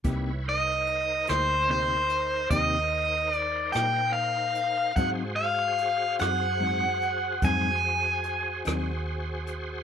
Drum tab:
HH |x-xx-xx-xx-x|x-xx-xx-xx-x|
SD |---r-----r--|---r-----r--|
BD |o-----o-----|o-----o-----|